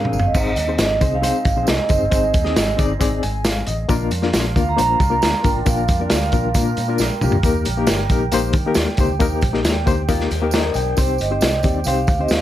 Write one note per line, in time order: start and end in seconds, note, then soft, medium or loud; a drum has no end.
0.00 0.10 G#2 medium
0.00 0.32 C4 medium
0.00 0.19 D4 medium
0.00 0.34 D4 medium
0.00 0.19 G#4 medium
0.00 0.31 G#4 medium
0.00 0.32 G#4 medium
0.00 0.20 A#4 loud
0.00 0.17 F5 loud
0.00 0.34 F5 medium
0.00 muted conga soft
0.00 high conga medium
0.05 mid tom medium
0.12 0.32 G1 loud
0.12 tambourine medium
0.12 low conga medium
0.18 0.25 F5 medium
0.18 floor tom medium
0.26 0.79 D#5 medium
0.34 0.54 G#1 loud
0.34 0.56 C4 medium
0.34 3.86 C4 medium
0.34 0.57 D#4 medium
0.34 3.64 D#4 medium
0.34 3.85 G#4 medium
0.34 0.57 G#4 medium
0.34 0.57 C5 medium
0.34 1.85 D#5 medium
0.34 kick loud
0.34 crash medium
0.34 tambourine medium
0.46 muted conga soft
0.56 0.76 D#2 loud
0.56 closed hi-hat medium
0.56 tambourine medium
0.56 high conga medium
0.68 0.89 C4 medium
0.68 0.90 D#4 medium
0.68 0.90 G#4 medium
0.68 0.90 C5 medium
0.78 0.99 G#1 loud
0.78 1.11 D#5 medium
0.78 snare loud
0.78 closed hi-hat loud
0.78 tambourine loud
0.78 high conga medium
0.90 high conga medium
1.01 1.30 C2 loud
1.01 1.15 C4 medium
1.01 1.16 D#4 medium
1.01 1.16 G#4 medium
1.01 1.16 C5 medium
1.01 kick medium
1.01 closed hi-hat medium
1.01 tambourine medium
1.11 1.23 F5 loud
1.11 low conga medium
1.22 1.44 C4 medium
1.22 1.44 D#4 medium
1.22 1.44 G#4 medium
1.22 1.45 C5 loud
1.22 1.65 F5 loud
1.22 closed hi-hat medium
1.22 tambourine loud
1.22 high conga medium
1.22 low conga medium
1.45 1.55 G#1 medium
1.45 kick loud
1.45 closed hi-hat medium
1.45 tambourine medium
1.45 high conga medium
1.57 1.67 A#1 medium
1.57 1.78 C4 medium
1.57 1.78 D#4 medium
1.57 1.78 G#4 medium
1.57 1.78 C5 medium
1.67 1.78 C2 medium
1.67 1.90 D#5 medium
1.67 snare loud
1.67 closed hi-hat medium
1.67 tambourine loud
1.79 high conga medium
1.89 2.00 F#1 medium
1.89 2.04 C4 medium
1.89 2.04 D#4 medium
1.89 2.04 G#4 medium
1.89 2.05 C5 medium
1.89 2.75 D#5 loud
1.89 kick loud
1.89 closed hi-hat medium
1.89 tambourine medium
1.89 low conga medium
2.02 2.11 G1 medium
2.10 2.32 G#1 loud
2.10 2.33 C4 medium
2.10 2.33 D#4 medium
2.10 2.33 G#4 medium
2.10 2.33 C5 medium
2.10 3.87 D#5 medium
2.10 kick loud
2.10 closed hi-hat medium
2.10 tambourine medium
2.10 muted conga soft
2.24 muted conga soft
2.33 2.54 D#2 loud
2.33 kick loud
2.33 closed hi-hat loud
2.33 tambourine medium
2.33 high conga medium
2.43 2.66 C4 medium
2.43 2.66 D#4 medium
2.43 2.66 G#4 medium
2.43 2.66 D#5 loud
2.43 snare soft
2.56 2.76 G#1 loud
2.56 snare loud
2.56 closed hi-hat loud
2.56 tambourine loud
2.56 muted conga soft
2.56 high conga medium
2.68 muted conga soft
2.68 high conga medium
2.77 2.98 G1 loud
2.77 2.92 C4 medium
2.77 2.93 D#4 medium
2.77 2.93 G#4 medium
2.77 2.93 D5 loud
2.77 kick medium
2.77 closed hi-hat medium
2.77 tambourine medium
2.90 low conga medium
3.00 3.20 G#1 medium
3.00 3.22 C4 loud
3.00 3.22 D#4 medium
3.00 3.22 G#4 loud
3.00 3.22 D5 loud
3.00 kick medium
3.00 closed hi-hat loud
3.00 tambourine loud
3.00 muted conga soft
3.00 high conga medium
3.00 low conga medium
3.12 muted conga soft
3.23 3.62 G#1 medium
3.23 3.44 G#5 medium
3.23 closed hi-hat medium
3.23 tambourine medium
3.23 high conga medium
3.44 3.66 F5 medium
3.44 snare loud
3.44 closed hi-hat medium
3.44 tambourine loud
3.57 muted conga soft
3.57 high conga medium
3.67 3.86 A1 medium
3.67 4.09 D#5 medium
3.67 closed hi-hat medium
3.67 tambourine medium
3.67 low conga medium
3.89 4.09 A#1 loud
3.89 4.10 A#3 loud
3.89 4.11 D4 loud
3.89 7.40 D4 medium
3.89 7.40 F4 medium
3.89 4.11 F4 loud
3.89 8.97 A#4 medium
3.89 4.11 A#4 loud
3.89 5.65 F5 medium
3.89 kick loud
3.89 closed hi-hat medium
3.89 tambourine medium
3.89 muted conga soft
4.01 muted conga soft
4.11 4.30 F2 loud
4.11 closed hi-hat medium
4.11 tambourine medium
4.11 high conga medium
4.22 4.44 A#3 medium
4.22 4.44 D4 medium
4.22 4.44 F4 medium
4.22 4.44 A#4 medium
4.22 snare soft
4.33 4.53 A#1 loud
4.33 snare loud
4.33 closed hi-hat loud
4.33 tambourine loud
4.33 high conga medium
4.45 high conga medium
4.56 4.75 D2 loud
4.56 4.70 A#3 medium
4.56 4.70 D4 medium
4.56 4.71 F4 medium
4.56 4.71 A#4 medium
4.56 4.62 F5 medium
4.56 kick medium
4.56 closed hi-hat medium
4.56 tambourine medium
4.66 4.79 A#5 loud
4.66 low conga medium
4.77 4.97 A#1 loud
4.77 4.99 A#3 medium
4.77 4.99 D4 medium
4.77 4.99 F4 medium
4.77 4.99 C5 medium
4.77 5.48 A#5 loud
4.77 closed hi-hat loud
4.77 tambourine loud
4.77 high conga medium
4.77 low conga medium
4.88 muted conga soft
5.00 5.19 C2 loud
5.00 kick loud
5.00 closed hi-hat medium
5.00 tambourine medium
5.00 high conga medium
5.10 5.32 A#3 medium
5.10 5.32 D4 medium
5.10 5.32 F4 medium
5.10 5.33 A#4 medium
5.22 5.32 D2 medium
5.22 snare loud
5.22 closed hi-hat loud
5.22 tambourine medium
5.34 muted conga soft
5.34 high conga medium
5.43 5.54 G#1 medium
5.43 5.58 A#3 medium
5.43 5.58 D4 medium
5.43 5.59 F4 medium
5.43 5.59 A#4 medium
5.43 5.59 G5 loud
5.43 kick loud
5.43 closed hi-hat medium
5.43 tambourine medium
5.43 low conga medium
5.57 5.66 A1 medium
5.63 5.86 A#1 loud
5.63 5.87 A#3 medium
5.63 5.87 D4 medium
5.63 5.88 F4 medium
5.63 5.88 A#4 loud
5.63 5.68 G5 medium
5.63 12.41 G5 medium
5.63 kick loud
5.63 closed hi-hat medium
5.63 tambourine loud
5.68 6.01 F5 loud
5.88 6.08 F2 medium
5.88 kick loud
5.88 closed hi-hat loud
5.88 tambourine medium
5.88 high conga medium
6.00 6.21 A#3 medium
6.00 6.22 D4 medium
6.00 6.22 F4 medium
6.00 6.22 A#4 medium
6.00 6.12 D5 medium
6.10 6.31 D2 loud
6.10 6.97 F5 loud
6.10 snare loud
6.10 closed hi-hat loud
6.10 tambourine loud
6.10 muted conga soft
6.10 high conga medium
6.21 muted conga soft
6.21 high conga medium
6.32 6.52 A#1 loud
6.32 6.47 A#3 medium
6.32 6.47 D4 medium
6.32 6.48 F4 medium
6.32 6.48 A#4 medium
6.32 kick medium
6.32 closed hi-hat medium
6.32 tambourine medium
6.44 low conga medium
6.54 6.74 A#2 loud
6.54 6.76 A#3 medium
6.54 6.77 D4 medium
6.54 6.77 F4 medium
6.54 6.77 A#4 loud
6.54 kick medium
6.54 closed hi-hat loud
6.54 tambourine loud
6.54 muted conga soft
6.54 high conga medium
6.54 low conga medium
6.66 muted conga soft
6.77 6.97 A#2 medium
6.77 closed hi-hat medium
6.77 tambourine medium
6.77 high conga medium
6.88 7.10 A#3 medium
6.88 7.10 D4 medium
6.88 7.10 F4 medium
6.88 7.10 A#4 loud
6.98 7.09 A#1 medium
6.98 snare medium
6.98 tambourine loud
7.11 high conga medium
7.21 7.32 C2 medium
7.21 7.36 A#3 loud
7.21 7.36 D4 medium
7.21 7.37 F4 medium
7.21 7.37 G4 loud
7.21 mid tom medium
7.21 tambourine medium
7.21 low conga medium
7.32 7.43 D2 medium
7.32 floor tom loud
7.43 7.63 D#2 loud
7.43 7.65 A#3 loud
7.43 7.66 D#4 medium
7.43 7.66 G4 medium
7.43 12.41 G4 medium
7.43 7.66 A#4 loud
7.43 kick medium
7.43 closed hi-hat medium
7.43 tambourine medium
7.43 muted conga soft
7.55 muted conga soft
7.65 7.86 A#1 loud
7.65 closed hi-hat loud
7.65 tambourine medium
7.65 high conga medium
7.77 7.98 A#3 loud
7.77 7.99 D#4 medium
7.77 7.99 G4 medium
7.77 7.99 A#4 loud
7.87 8.08 G1 loud
7.87 snare loud
7.87 closed hi-hat loud
7.87 tambourine loud
7.87 high conga medium
7.98 muted conga soft
7.98 high conga medium
8.09 8.29 A#1 loud
8.09 8.24 A#3 loud
8.09 8.25 D#4 medium
8.09 8.25 G4 medium
8.09 8.25 A#4 loud
8.09 kick medium
8.09 closed hi-hat medium
8.09 tambourine medium
8.21 low conga medium
8.32 8.52 A#1 medium
8.32 8.54 A#3 loud
8.32 8.54 D#4 medium
8.32 8.54 G4 loud
8.32 8.54 C5 loud
8.32 closed hi-hat loud
8.32 tambourine loud
8.32 high conga medium
8.32 low conga medium
8.53 8.73 D#3 medium
8.53 kick loud
8.53 closed hi-hat medium
8.53 tambourine medium
8.53 high conga medium
8.66 8.87 A#3 medium
8.66 8.87 D#4 medium
8.66 8.88 G4 medium
8.66 8.88 A#4 loud
8.74 8.86 D#2 loud
8.74 snare loud
8.74 closed hi-hat loud
8.74 tambourine loud
8.87 muted conga soft
8.87 high conga medium
8.97 9.08 C#2 medium
8.97 9.13 A#3 medium
8.97 9.13 D#4 medium
8.97 9.14 G4 medium
8.97 9.14 C5 loud
8.97 kick loud
8.97 closed hi-hat medium
8.97 tambourine medium
8.97 low conga medium
9.09 9.19 D2 medium
9.19 9.40 D#2 loud
9.19 9.42 A#3 loud
9.19 9.42 D#4 loud
9.19 9.42 G4 medium
9.19 9.42 A#4 loud
9.19 12.41 C5 medium
9.19 kick loud
9.19 closed hi-hat medium
9.19 tambourine medium
9.32 muted conga soft
9.41 9.62 A#1 medium
9.41 kick loud
9.41 closed hi-hat loud
9.41 tambourine medium
9.41 high conga medium
9.53 9.75 A#3 medium
9.53 9.75 D#4 medium
9.53 9.75 G4 medium
9.53 9.75 A#4 loud
9.53 snare soft
9.65 9.84 D#2 loud
9.65 snare loud
9.65 closed hi-hat loud
9.65 tambourine loud
9.65 muted conga soft
9.65 high conga medium
9.75 muted conga soft
9.75 high conga medium
9.86 10.06 D2 loud
9.86 10.01 A#3 medium
9.86 10.01 D#4 medium
9.86 10.01 G4 medium
9.86 10.01 C5 loud
9.86 kick medium
9.86 closed hi-hat medium
9.86 tambourine medium
9.98 low conga medium
10.08 10.28 D#2 medium
10.08 10.30 A#3 loud
10.08 10.30 D#4 medium
10.08 10.30 F4 medium
10.08 10.30 G4 loud
10.08 10.31 A#4 loud
10.08 kick medium
10.08 closed hi-hat loud
10.08 tambourine loud
10.08 high conga medium
10.08 low conga medium
10.20 snare soft
10.31 10.70 D#2 medium
10.31 10.53 A#3 medium
10.31 10.53 G4 medium
10.31 closed hi-hat medium
10.31 tambourine medium
10.31 high conga medium
10.42 10.63 A#3 loud
10.42 10.64 D#4 medium
10.42 10.64 G4 medium
10.42 10.64 A#4 loud
10.51 10.96 D4 medium
10.51 10.95 A#4 medium
10.51 10.75 D#5 medium
10.51 snare loud
10.51 closed hi-hat medium
10.51 tambourine loud
10.65 high conga medium
10.74 10.95 B1 loud
10.74 11.18 G5 medium
10.74 closed hi-hat medium
10.74 tambourine medium
10.74 low conga medium
10.97 11.17 C2 loud
10.97 11.19 C4 medium
10.97 11.19 D#4 medium
10.97 11.19 G4 medium
10.97 11.19 C5 loud
10.97 11.09 C5 loud
10.97 kick medium
10.97 closed hi-hat medium
10.97 tambourine loud
10.97 muted conga soft
11.18 11.39 G1 medium
11.18 11.66 D#5 medium
11.18 closed hi-hat medium
11.18 tambourine medium
11.18 high conga medium
11.31 11.52 C4 medium
11.31 11.52 D#4 medium
11.31 11.52 G4 medium
11.31 11.53 C5 medium
11.41 11.61 C2 medium
11.41 snare loud
11.41 closed hi-hat loud
11.41 tambourine loud
11.41 high conga medium
11.52 high conga medium
11.63 11.83 D#2 loud
11.63 11.78 C4 medium
11.63 11.78 D#4 medium
11.63 11.79 G4 medium
11.63 11.79 D5 medium
11.63 11.87 G5 loud
11.63 kick loud
11.63 closed hi-hat medium
11.63 tambourine medium
11.74 low conga medium
11.84 12.05 C2 loud
11.84 12.08 C4 medium
11.84 12.08 D#4 medium
11.84 12.08 G4 medium
11.84 12.08 C5 loud
11.84 12.20 F5 loud
11.84 closed hi-hat loud
11.84 tambourine loud
11.84 high conga medium
11.84 low conga medium
12.07 12.27 D2 medium
12.07 kick loud
12.07 closed hi-hat medium
12.07 tambourine medium
12.07 high conga medium
12.19 12.41 C4 medium
12.19 12.41 D#4 medium
12.19 12.41 G4 medium
12.19 12.41 C5 medium
12.19 12.32 D#5 loud
12.28 12.40 D#2 medium
12.28 12.41 F5 loud
12.28 snare loud
12.28 closed hi-hat medium
12.28 tambourine medium